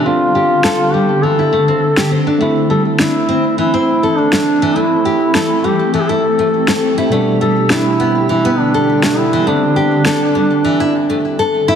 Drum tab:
SD |----o--------o--|----o--------o--|----o--------o--|----o--------o--|

SD |----o-----------|